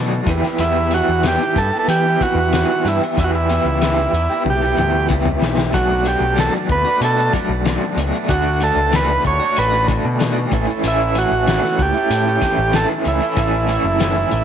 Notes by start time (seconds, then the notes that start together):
Already playing: B2 D3 F#3 A3 D4 F#4 A4 A5
0.00 F#4
0.26 E2 E3 G3 B3 B4 B5, kick, closed hi-hat
0.30 E4 G4 E5
0.43 B3 E4 G4, snare
0.58 E2 E3 B3 E4, closed hi-hat
0.63 E4 G4
0.91 E3 B3 F#4, closed hi-hat
0.95 E4 G4
1.09 E2
1.23 E3 B3 E4, snare, closed hi-hat
1.27 G4
1.41 B3 E4 G4
1.56 G2 A4, muted clean electric guitar stroke, kick, closed hi-hat
1.73 B3 E4 G4
1.79 A4
1.88 E3 G4, closed hi-hat
2.06 B3 E4 G4
2.21 E3 B3 E4 F#4, kick, closed hi-hat
2.25 G4
2.35 E2
2.52 E3 B3 E4 G4, snare, closed hi-hat
2.85 G2 E3 B3 E4 G4 D5, closed hi-hat
3.01 B3 E4 G4
3.17 E2 E3 B3 E4 G4, kick, closed hi-hat
3.24 F#4
3.35 E4
3.49 E3 B3 E4 G4, closed hi-hat
3.65 C#2
3.81 E3 B3 E4 G4, snare, closed hi-hat
3.96 B3 E4 G4
4.13 E2, muted clean electric guitar stroke, closed hi-hat
4.30 B3 E4 G4
4.45 B1, high tom
4.50 G4
4.61 B3 E4 G4
4.76 D2 E3 B3 E4 G4, mid tom
5.08 C#2 E3 B3 E4 G4, kick
5.26 mid tom
5.39 B1 E3 B3 E4, snare
5.43 G4
5.56 B3 E4 G4, snare
5.71 B1 B2 F#3 A3 D4 F#4, kick, closed hi-hat
5.76 A5
6.04 F#3 A3 D4 G4, closed hi-hat
6.08 F#4
6.20 B1
6.35 B2 F#3 A3 D4 F#4, snare, closed hi-hat
6.39 A4
6.53 A3 D4 F#4
6.69 D2 B4, muted clean electric guitar stroke, kick, closed hi-hat
6.85 A3 D4 F#4
7.01 B2 A4, closed hi-hat
7.16 A3 D4 F#4
7.33 F#3 A3 D4 F#4, kick, closed hi-hat
7.49 B1
7.65 B2 F#3 A3 D4 F#4, snare, closed hi-hat
7.96 C#2 F#3 A3 D4 F#4, closed hi-hat
8.12 A3 D4 F#4
8.27 D2 D3 A3 D4 F#4 A4, kick, closed hi-hat
8.60 D3 A3 D4 F#4 A4, closed hi-hat
8.76 C#2
8.92 D3 A3 D4 F#4, snare, closed hi-hat
8.96 B4
9.08 A3 D4 F#4
9.24 D2 C#5, muted clean electric guitar stroke, kick, closed hi-hat
9.40 A3 D4 F#4
9.56 A1 B4, closed hi-hat
9.70 A3 D4 F#4
9.87 D3 A3 D4 F#4, kick, closed hi-hat
10.05 B2
10.19 D3 A3 D4 F#4, snare, closed hi-hat
10.50 A1 A2 E3 A3 C#4 E4 C#5, kick, closed hi-hat
10.67 A3 C#4 E4
10.82 A1 A2 E3 A3 C#4 E4, closed hi-hat
10.88 E4
11.15 E3 A3 C#4 E4 F#4, closed hi-hat
11.31 A1
11.46 A2 E3 A3 C#4 E4, snare, closed hi-hat
11.62 A3 C#4 E4, snare
11.79 C#2 G4, muted clean electric guitar stroke, kick, closed hi-hat
11.94 A3 C#4 E4
12.10 A2, closed hi-hat
12.25 A3 C#4 E4
12.41 E3 A3 C#4 E4, kick, snare, closed hi-hat
12.58 A1
12.72 A2 E3 A3 C#4 A4, snare, closed hi-hat
12.76 E4
13.03 C#2 E3 A3 C#4 E4, closed hi-hat
13.08 E4
13.20 A3 C#4 E4
13.36 A1 A2 E3 A3 C#4 E4, kick, closed hi-hat
13.66 E3 A3 C#4 E4, closed hi-hat
13.84 F#1
13.99 A2 E3 A3 C#4 E4, snare, closed hi-hat
14.13 A3 C#4 E4
14.31 A1, muted clean electric guitar stroke, closed hi-hat